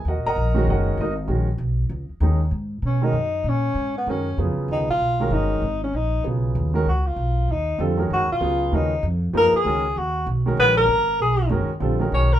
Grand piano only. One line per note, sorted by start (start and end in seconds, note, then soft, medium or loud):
0.08 0.26 F#4 medium
0.08 0.26 A#4 medium
0.08 0.25 D#5 medium
0.08 0.26 F#5 medium
0.26 0.66 A#4 medium
0.26 0.66 D#5 loud
0.26 0.66 F#5 medium
0.26 0.65 A#5 loud
0.54 0.95 D#3 medium
0.54 0.95 G#3 medium
0.54 0.95 C#4 medium
0.54 0.68 F#4 loud
0.70 0.97 F#4 medium
0.70 0.98 A#4 medium
0.70 0.98 D#5 medium
0.70 0.97 F#5 medium
1.01 1.12 D#4 medium
1.01 1.11 F#4 medium
1.01 1.12 A#4 medium
1.01 1.11 D#5 medium
1.28 1.46 D#3 medium
1.28 1.46 G#3 medium
1.28 1.46 C#4 medium
1.28 1.47 F#4 medium
2.21 2.39 D#3 medium
2.21 2.39 G#3 medium
2.21 2.39 C#4 medium
2.21 2.40 D#4 medium
3.02 3.13 D#3 medium
3.02 3.13 G#3 medium
3.02 3.13 C#4 medium
3.02 3.13 F#4 medium
3.02 3.14 A#4 medium
4.07 4.25 D#3 medium
4.07 4.25 G#3 medium
4.07 4.25 C#4 medium
4.07 4.25 F#4 medium
4.07 4.26 A#4 medium
4.38 4.85 C#3 medium
4.38 4.85 F#3 medium
4.38 4.85 B3 medium
4.38 4.85 F4 medium
4.38 4.86 G#4 medium
5.20 5.60 D#3 medium
5.20 5.60 G#3 medium
5.20 5.60 C#4 medium
5.20 5.61 F#4 medium
5.20 5.61 A#4 medium
6.23 6.70 C#3 medium
6.23 6.71 F#3 medium
6.23 6.71 B3 medium
6.23 6.71 F4 medium
6.23 6.71 G#4 medium
6.74 6.85 D#3 medium
6.74 6.85 G#3 medium
6.74 6.85 C#4 medium
6.74 6.85 F#4 medium
6.74 6.86 A#4 loud
7.78 7.96 D3 medium
7.78 7.97 G3 medium
7.78 7.97 C4 medium
7.78 7.97 F4 medium
7.78 7.97 A4 medium
7.97 8.25 D#3 medium
7.97 8.25 G#3 medium
7.97 8.26 C#4 medium
7.97 8.26 F#4 medium
7.97 8.26 A#4 medium
8.40 8.87 C#3 medium
8.40 8.87 F#3 medium
8.40 8.88 B3 medium
8.40 8.88 F4 medium
8.40 8.88 G#4 medium
8.72 8.89 D#3 medium
8.72 8.90 G#3 medium
8.72 8.90 C#4 medium
8.72 8.90 F#4 medium
8.72 8.90 A#4 medium
9.33 9.51 F3 medium
9.33 9.52 A#3 medium
9.33 9.52 D#4 medium
9.33 9.52 G#4 medium
9.33 9.52 B4 medium
9.65 9.82 D#3 medium
9.65 9.82 G#3 medium
9.65 9.83 C#4 medium
9.65 9.83 F#4 medium
9.65 9.83 A#4 medium
10.46 10.86 D#3 medium
10.46 10.87 G#3 medium
10.46 10.87 C#4 medium
10.46 10.87 F#4 medium
10.46 10.87 A#4 medium
11.50 11.68 D#3 medium
11.50 11.68 G#3 medium
11.50 11.68 C#4 medium
11.50 11.68 F#4 medium
11.50 11.69 A#4 medium
11.80 11.98 D3 medium
11.80 11.99 G3 medium
11.80 11.99 C4 medium
11.80 11.99 F4 medium
11.80 11.99 A4 medium
11.99 12.27 D#3 medium
11.99 12.28 G#3 medium
11.99 12.28 C#4 medium
11.99 12.28 F#4 medium
11.99 12.28 A#4 medium